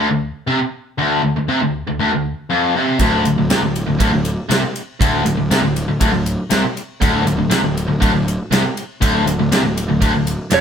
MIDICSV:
0, 0, Header, 1, 5, 480
1, 0, Start_track
1, 0, Tempo, 502092
1, 934, Time_signature, 4, 2, 24, 8
1, 10140, End_track
2, 0, Start_track
2, 0, Title_t, "Lead electric guitar"
2, 0, Program_c, 0, 29
2, 10077, Note_on_c, 0, 74, 81
2, 10140, Note_off_c, 0, 74, 0
2, 10140, End_track
3, 0, Start_track
3, 0, Title_t, "Overdriven electric guitar"
3, 0, Program_c, 1, 29
3, 96, Note_on_c, 1, 38, 65
3, 287, Note_off_c, 1, 38, 0
3, 450, Note_on_c, 1, 48, 97
3, 565, Note_off_c, 1, 48, 0
3, 936, Note_on_c, 1, 38, 98
3, 1169, Note_off_c, 1, 38, 0
3, 1179, Note_on_c, 1, 38, 70
3, 1297, Note_off_c, 1, 38, 0
3, 1308, Note_on_c, 1, 38, 67
3, 1414, Note_off_c, 1, 38, 0
3, 1418, Note_on_c, 1, 48, 95
3, 1530, Note_off_c, 1, 48, 0
3, 1551, Note_on_c, 1, 38, 70
3, 1736, Note_off_c, 1, 38, 0
3, 1793, Note_on_c, 1, 38, 62
3, 1894, Note_off_c, 1, 38, 0
3, 1906, Note_on_c, 1, 38, 97
3, 2014, Note_off_c, 1, 38, 0
3, 2035, Note_on_c, 1, 38, 63
3, 2218, Note_off_c, 1, 38, 0
3, 2387, Note_on_c, 1, 41, 95
3, 2616, Note_off_c, 1, 41, 0
3, 2638, Note_on_c, 1, 48, 89
3, 2860, Note_off_c, 1, 48, 0
3, 2864, Note_on_c, 1, 38, 101
3, 3094, Note_off_c, 1, 38, 0
3, 3112, Note_on_c, 1, 38, 67
3, 3221, Note_off_c, 1, 38, 0
3, 3233, Note_on_c, 1, 38, 68
3, 3343, Note_off_c, 1, 38, 0
3, 3346, Note_on_c, 1, 48, 96
3, 3456, Note_off_c, 1, 48, 0
3, 3468, Note_on_c, 1, 38, 64
3, 3655, Note_off_c, 1, 38, 0
3, 3705, Note_on_c, 1, 38, 62
3, 3815, Note_off_c, 1, 38, 0
3, 3826, Note_on_c, 1, 38, 103
3, 3936, Note_off_c, 1, 38, 0
3, 3948, Note_on_c, 1, 38, 62
3, 4136, Note_off_c, 1, 38, 0
3, 4293, Note_on_c, 1, 48, 98
3, 4409, Note_off_c, 1, 48, 0
3, 4788, Note_on_c, 1, 38, 99
3, 5009, Note_off_c, 1, 38, 0
3, 5020, Note_on_c, 1, 38, 66
3, 5123, Note_off_c, 1, 38, 0
3, 5134, Note_on_c, 1, 38, 68
3, 5257, Note_off_c, 1, 38, 0
3, 5263, Note_on_c, 1, 48, 101
3, 5371, Note_off_c, 1, 48, 0
3, 5375, Note_on_c, 1, 38, 69
3, 5569, Note_off_c, 1, 38, 0
3, 5621, Note_on_c, 1, 38, 63
3, 5728, Note_off_c, 1, 38, 0
3, 5739, Note_on_c, 1, 38, 100
3, 5844, Note_off_c, 1, 38, 0
3, 5856, Note_on_c, 1, 38, 68
3, 6049, Note_off_c, 1, 38, 0
3, 6213, Note_on_c, 1, 48, 96
3, 6329, Note_off_c, 1, 48, 0
3, 6702, Note_on_c, 1, 38, 96
3, 6925, Note_off_c, 1, 38, 0
3, 6936, Note_on_c, 1, 38, 66
3, 7049, Note_off_c, 1, 38, 0
3, 7060, Note_on_c, 1, 38, 72
3, 7162, Note_off_c, 1, 38, 0
3, 7166, Note_on_c, 1, 48, 103
3, 7284, Note_off_c, 1, 48, 0
3, 7294, Note_on_c, 1, 38, 67
3, 7487, Note_off_c, 1, 38, 0
3, 7535, Note_on_c, 1, 38, 71
3, 7640, Note_off_c, 1, 38, 0
3, 7651, Note_on_c, 1, 38, 104
3, 7764, Note_off_c, 1, 38, 0
3, 7775, Note_on_c, 1, 38, 66
3, 7967, Note_off_c, 1, 38, 0
3, 8139, Note_on_c, 1, 48, 100
3, 8250, Note_off_c, 1, 48, 0
3, 8612, Note_on_c, 1, 38, 99
3, 8843, Note_off_c, 1, 38, 0
3, 8855, Note_on_c, 1, 38, 73
3, 8970, Note_off_c, 1, 38, 0
3, 8981, Note_on_c, 1, 38, 71
3, 9096, Note_off_c, 1, 38, 0
3, 9100, Note_on_c, 1, 48, 99
3, 9209, Note_off_c, 1, 48, 0
3, 9218, Note_on_c, 1, 38, 66
3, 9406, Note_off_c, 1, 38, 0
3, 9461, Note_on_c, 1, 38, 67
3, 9568, Note_off_c, 1, 38, 0
3, 9580, Note_on_c, 1, 38, 99
3, 9687, Note_off_c, 1, 38, 0
3, 9701, Note_on_c, 1, 38, 60
3, 9886, Note_off_c, 1, 38, 0
3, 10051, Note_on_c, 1, 41, 98
3, 10140, Note_off_c, 1, 41, 0
3, 10140, End_track
4, 0, Start_track
4, 0, Title_t, "Picked electric bass"
4, 0, Program_c, 2, 34
4, 2861, Note_on_c, 2, 26, 94
4, 3083, Note_off_c, 2, 26, 0
4, 3108, Note_on_c, 2, 26, 73
4, 3215, Note_off_c, 2, 26, 0
4, 3229, Note_on_c, 2, 26, 74
4, 3336, Note_off_c, 2, 26, 0
4, 3353, Note_on_c, 2, 36, 82
4, 3458, Note_off_c, 2, 36, 0
4, 3472, Note_on_c, 2, 26, 68
4, 3689, Note_off_c, 2, 26, 0
4, 3706, Note_on_c, 2, 26, 75
4, 3814, Note_off_c, 2, 26, 0
4, 3825, Note_on_c, 2, 26, 86
4, 3934, Note_off_c, 2, 26, 0
4, 3952, Note_on_c, 2, 26, 72
4, 4169, Note_off_c, 2, 26, 0
4, 4300, Note_on_c, 2, 36, 89
4, 4411, Note_off_c, 2, 36, 0
4, 4785, Note_on_c, 2, 26, 94
4, 5006, Note_off_c, 2, 26, 0
4, 5025, Note_on_c, 2, 26, 72
4, 5134, Note_off_c, 2, 26, 0
4, 5146, Note_on_c, 2, 26, 71
4, 5255, Note_off_c, 2, 26, 0
4, 5260, Note_on_c, 2, 36, 80
4, 5372, Note_off_c, 2, 36, 0
4, 5377, Note_on_c, 2, 26, 69
4, 5601, Note_off_c, 2, 26, 0
4, 5623, Note_on_c, 2, 26, 74
4, 5733, Note_off_c, 2, 26, 0
4, 5751, Note_on_c, 2, 26, 87
4, 5857, Note_off_c, 2, 26, 0
4, 5863, Note_on_c, 2, 26, 73
4, 6084, Note_off_c, 2, 26, 0
4, 6232, Note_on_c, 2, 36, 86
4, 6337, Note_off_c, 2, 36, 0
4, 6710, Note_on_c, 2, 26, 93
4, 6928, Note_off_c, 2, 26, 0
4, 6939, Note_on_c, 2, 26, 70
4, 7043, Note_off_c, 2, 26, 0
4, 7049, Note_on_c, 2, 26, 76
4, 7164, Note_off_c, 2, 26, 0
4, 7173, Note_on_c, 2, 36, 85
4, 7286, Note_off_c, 2, 36, 0
4, 7303, Note_on_c, 2, 26, 73
4, 7523, Note_off_c, 2, 26, 0
4, 7537, Note_on_c, 2, 26, 74
4, 7648, Note_off_c, 2, 26, 0
4, 7673, Note_on_c, 2, 26, 94
4, 7768, Note_off_c, 2, 26, 0
4, 7773, Note_on_c, 2, 26, 73
4, 7997, Note_off_c, 2, 26, 0
4, 8134, Note_on_c, 2, 36, 93
4, 8246, Note_off_c, 2, 36, 0
4, 8624, Note_on_c, 2, 26, 88
4, 8842, Note_off_c, 2, 26, 0
4, 8856, Note_on_c, 2, 26, 72
4, 8966, Note_off_c, 2, 26, 0
4, 8979, Note_on_c, 2, 26, 77
4, 9088, Note_off_c, 2, 26, 0
4, 9108, Note_on_c, 2, 36, 83
4, 9210, Note_off_c, 2, 36, 0
4, 9216, Note_on_c, 2, 26, 69
4, 9436, Note_off_c, 2, 26, 0
4, 9456, Note_on_c, 2, 26, 72
4, 9565, Note_off_c, 2, 26, 0
4, 9583, Note_on_c, 2, 26, 92
4, 9689, Note_off_c, 2, 26, 0
4, 9697, Note_on_c, 2, 26, 71
4, 9916, Note_off_c, 2, 26, 0
4, 10060, Note_on_c, 2, 29, 91
4, 10140, Note_off_c, 2, 29, 0
4, 10140, End_track
5, 0, Start_track
5, 0, Title_t, "Drums"
5, 2862, Note_on_c, 9, 51, 82
5, 2865, Note_on_c, 9, 36, 93
5, 2957, Note_off_c, 9, 51, 0
5, 2961, Note_off_c, 9, 36, 0
5, 3110, Note_on_c, 9, 51, 63
5, 3205, Note_off_c, 9, 51, 0
5, 3347, Note_on_c, 9, 51, 78
5, 3358, Note_on_c, 9, 38, 104
5, 3443, Note_off_c, 9, 51, 0
5, 3453, Note_off_c, 9, 38, 0
5, 3591, Note_on_c, 9, 51, 63
5, 3687, Note_off_c, 9, 51, 0
5, 3825, Note_on_c, 9, 36, 97
5, 3827, Note_on_c, 9, 51, 89
5, 3921, Note_off_c, 9, 36, 0
5, 3923, Note_off_c, 9, 51, 0
5, 4061, Note_on_c, 9, 51, 66
5, 4157, Note_off_c, 9, 51, 0
5, 4309, Note_on_c, 9, 51, 86
5, 4319, Note_on_c, 9, 38, 105
5, 4404, Note_off_c, 9, 51, 0
5, 4415, Note_off_c, 9, 38, 0
5, 4547, Note_on_c, 9, 51, 62
5, 4643, Note_off_c, 9, 51, 0
5, 4787, Note_on_c, 9, 36, 99
5, 4795, Note_on_c, 9, 51, 91
5, 4883, Note_off_c, 9, 36, 0
5, 4890, Note_off_c, 9, 51, 0
5, 5027, Note_on_c, 9, 51, 68
5, 5122, Note_off_c, 9, 51, 0
5, 5269, Note_on_c, 9, 51, 80
5, 5280, Note_on_c, 9, 38, 102
5, 5365, Note_off_c, 9, 51, 0
5, 5375, Note_off_c, 9, 38, 0
5, 5509, Note_on_c, 9, 51, 68
5, 5605, Note_off_c, 9, 51, 0
5, 5743, Note_on_c, 9, 51, 90
5, 5746, Note_on_c, 9, 36, 93
5, 5838, Note_off_c, 9, 51, 0
5, 5841, Note_off_c, 9, 36, 0
5, 5986, Note_on_c, 9, 51, 60
5, 6081, Note_off_c, 9, 51, 0
5, 6219, Note_on_c, 9, 51, 86
5, 6229, Note_on_c, 9, 38, 100
5, 6314, Note_off_c, 9, 51, 0
5, 6325, Note_off_c, 9, 38, 0
5, 6472, Note_on_c, 9, 51, 55
5, 6568, Note_off_c, 9, 51, 0
5, 6708, Note_on_c, 9, 36, 97
5, 6712, Note_on_c, 9, 51, 84
5, 6803, Note_off_c, 9, 36, 0
5, 6808, Note_off_c, 9, 51, 0
5, 6950, Note_on_c, 9, 51, 61
5, 7045, Note_off_c, 9, 51, 0
5, 7180, Note_on_c, 9, 51, 81
5, 7191, Note_on_c, 9, 38, 98
5, 7276, Note_off_c, 9, 51, 0
5, 7286, Note_off_c, 9, 38, 0
5, 7432, Note_on_c, 9, 51, 65
5, 7528, Note_off_c, 9, 51, 0
5, 7666, Note_on_c, 9, 36, 97
5, 7670, Note_on_c, 9, 51, 78
5, 7762, Note_off_c, 9, 36, 0
5, 7766, Note_off_c, 9, 51, 0
5, 7916, Note_on_c, 9, 51, 61
5, 8011, Note_off_c, 9, 51, 0
5, 8148, Note_on_c, 9, 51, 81
5, 8159, Note_on_c, 9, 38, 109
5, 8244, Note_off_c, 9, 51, 0
5, 8255, Note_off_c, 9, 38, 0
5, 8386, Note_on_c, 9, 51, 61
5, 8482, Note_off_c, 9, 51, 0
5, 8622, Note_on_c, 9, 36, 91
5, 8626, Note_on_c, 9, 51, 93
5, 8718, Note_off_c, 9, 36, 0
5, 8722, Note_off_c, 9, 51, 0
5, 8866, Note_on_c, 9, 51, 71
5, 8961, Note_off_c, 9, 51, 0
5, 9102, Note_on_c, 9, 51, 89
5, 9113, Note_on_c, 9, 38, 100
5, 9198, Note_off_c, 9, 51, 0
5, 9208, Note_off_c, 9, 38, 0
5, 9345, Note_on_c, 9, 51, 71
5, 9440, Note_off_c, 9, 51, 0
5, 9576, Note_on_c, 9, 36, 95
5, 9578, Note_on_c, 9, 51, 86
5, 9672, Note_off_c, 9, 36, 0
5, 9674, Note_off_c, 9, 51, 0
5, 9817, Note_on_c, 9, 51, 68
5, 9913, Note_off_c, 9, 51, 0
5, 10044, Note_on_c, 9, 51, 83
5, 10054, Note_on_c, 9, 38, 103
5, 10139, Note_off_c, 9, 51, 0
5, 10140, Note_off_c, 9, 38, 0
5, 10140, End_track
0, 0, End_of_file